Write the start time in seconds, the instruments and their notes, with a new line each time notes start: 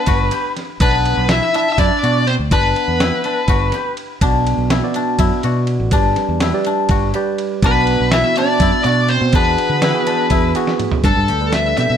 Already playing: trombone B3, guzheng D4 E4, lead electric guitar B4
0.06 fingered electric bass G1, guzheng F#4, kick, ride
0.31 guzheng G4, ride
0.57 snare, ride
0.80 fingered electric bass B1, trombone B3, guzheng D4, lead electric guitar B4, kick, ride
1.05 ride
1.17 fingered electric bass B1
1.29 trombone E4, guzheng E4, lead electric guitar E5, snare, ride
1.52 guzheng D4, trombone E4, lead electric guitar E5, ride
1.71 trombone E4, lead electric guitar E5
1.78 fingered electric bass F#2, trombone D4, guzheng E4, lead electric guitar D5, kick, snare, ride
2.03 fingered electric bass B2, guzheng F#4, ride
2.27 trombone C4, lead electric guitar C5, ride
2.39 fingered electric bass D2
2.51 fingered electric bass G1, trombone B3, guzheng D4, lead electric guitar B4, kick, ride
2.76 ride
2.88 fingered electric bass E2
3.00 guzheng E4, snare, ride
3.24 guzheng D4, ride
3.48 fingered electric bass G1, guzheng F#4, kick, ride
3.72 guzheng G4, snare, ride
3.97 ride
4.21 fingered electric bass B1, tine electric piano B2 B3 F#4 D5, guzheng D4, kick, ride
4.47 ride
4.57 fingered electric bass B1
4.70 guzheng E4, snare, ride
4.83 tine electric piano B2 B3 F#4 D5
4.94 guzheng D4, ride
5.19 fingered electric bass F#2, guzheng E4, kick, ride
5.43 fingered electric bass B2, tine electric piano B2 B3 F#4 D5, guzheng F#4, ride
5.67 ride
5.80 fingered electric bass A1
5.91 fingered electric bass G1, tine electric piano G3 G4 B4 D5, guzheng D4, kick, ride
6.16 snare, ride
6.29 fingered electric bass E2
6.40 guzheng E4, snare, ride
6.54 tine electric piano G3 G4 B4 D5
6.65 guzheng D4, ride
6.89 fingered electric bass G1, guzheng F#4, kick, ride
7.14 tine electric piano G3 G4 B4 D5, guzheng G4, ride
7.38 ride
7.62 fingered electric bass B1, tine electric piano B2 B3 F#4 D5, trombone B3, guzheng D4, lead electric guitar B4, kick, ride
7.87 ride
8.00 fingered electric bass B1
8.11 guzheng E4, trombone E4, lead electric guitar E5, snare, ride
8.24 tine electric piano B2 B3 F#4 E5
8.36 guzheng D4, trombone D4, lead electric guitar D5, snare, ride
8.60 fingered electric bass F#2, guzheng E4, kick, ride
8.84 fingered electric bass B2, tine electric piano B2 B3 F#4 D5, trombone D4, guzheng F#4, lead electric guitar D5, ride
9.09 trombone C4, lead electric guitar C5, ride
9.21 fingered electric bass B2
9.33 fingered electric bass E2, tine electric piano E3 B3 F#4 G#4, trombone B3, guzheng D4, lead electric guitar B4, kick, ride
9.58 ride
9.69 fingered electric bass D3
9.82 guzheng E4, snare, ride
9.95 tine electric piano E3 B3 F#4 G#4
10.07 guzheng D4, ride
10.30 fingered electric bass E2, guzheng E4, kick, ride
10.55 tine electric piano E3 B3 F#4 G#4, guzheng F#4, ride
10.67 snare
10.80 mid tom, ride
10.91 floor tom
11.04 fingered electric bass G2, tine electric piano G3 D4 A4 B4, guzheng D4, lead electric guitar A4, kick, closed hi-hat
11.16 fingered electric bass G2
11.28 fingered electric bass D2, guzheng G4, closed hi-hat
11.41 tine electric piano G3 D4 A4 B4
11.53 lead electric guitar E5, snare, closed hi-hat
11.65 tine electric piano G3 D4 A4 B4
11.77 fingered electric bass B2, guzheng G4, lead electric guitar E5, snare, closed hi-hat
11.90 fingered electric bass B2